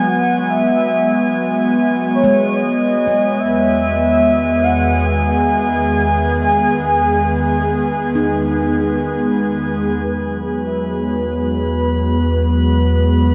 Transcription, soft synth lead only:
\new Staff \with { instrumentName = "Soft synth lead" } { \time 4/4 \key e \major \tempo 4 = 72 fis''8 e''4. r8 cis''8 dis''4 | e''4. fis''8 gis''2~ | gis''2. r4 | b'4 cis''4 b'2 | }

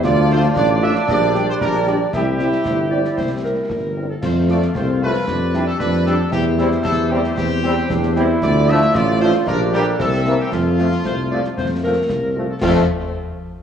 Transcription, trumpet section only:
\new Staff \with { instrumentName = "Trumpet section" } { \time 2/4 \key f \major \tempo 4 = 114 d''8 c''8 d''8 e''8 | d''8. c''16 bes'8 d''8 | g'2~ | g'4 r4 |
c''8 d''8 c''8 b'8~ | b'8. a'16 b'8 a'8 | g'8 e'8 a'8 g'8 | g'4. r8 |
d''8 e''8 d''8 c''8 | bes'8 g'8 a'8. g'16 | f'2~ | f'4 r4 |
f'8 r4. | }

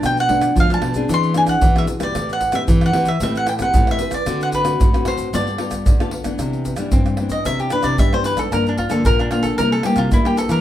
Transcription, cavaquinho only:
\new Staff \with { instrumentName = "Cavaquinho" } { \time 4/4 \key g \major \tempo 4 = 113 g''16 fis''8. f''16 a''8. c'''8 gis''16 fis''8 e''8 d''16~ | d''16 fis''8 e''8 fis''8 e''16 e''16 fis''16 g''16 fis''8 e''8 d''16~ | d''16 fis''16 b'4 c''8 d''4. r8 | \key c \major r4. r16 ees''16 e''16 g'16 b'16 d''16 e''16 c''16 b'16 a'16 |
bes'16 d'16 f'16 a'16 bes'16 d'16 f'16 a'16 bes'16 a'16 g'16 f'16 e'16 g'16 a'16 bes'16 | }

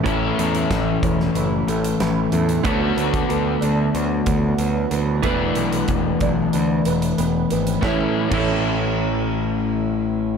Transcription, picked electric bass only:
\new Staff \with { instrumentName = "Picked electric bass" } { \clef bass \time 4/4 \key a \major \tempo 4 = 93 a,,8 e,8 a,,8 e,,8 fis,,8 a,,8 a,,8 e,8 | d,8 d,8 d,8 d,8 d,8 d,8 d,8 d,8 | e,,8 b,,8 e,,8 b,,8 d,8 e,,8 e,,8 gis,,8 | a,,16 r8 a,,2.~ a,,16 | }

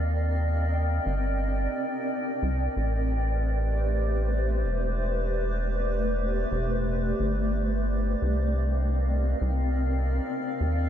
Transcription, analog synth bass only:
\new Staff \with { instrumentName = "Analog synth bass" } { \clef bass \time 4/4 \key c \mixolydian \tempo 4 = 88 ees,4. g,,4 r4 c,8 | a,,2~ a,,8. e,,4~ e,,16~ | e,,4. e,,4 g,,4. | c,4.~ c,16 c,4~ c,16 r8 ees,8 | }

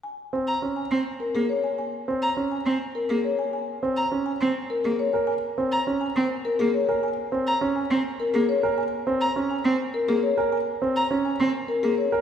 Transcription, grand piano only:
\new Staff \with { instrumentName = "Grand piano" } { \time 3/4 \key c \phrygian \tempo 4 = 103 r8 c'16 r16 des'16 r4. r16 | r8 c'16 r16 des'16 r4. r16 | r8 c'16 r16 des'16 r4. bes'16 | r8 c'16 r16 des'16 r4. bes'16 |
r8 c'16 r16 des'16 r4. bes'16 | r8 c'16 r16 des'16 r4. bes'16 | r8 c'16 r16 des'16 r4. bes'16 | }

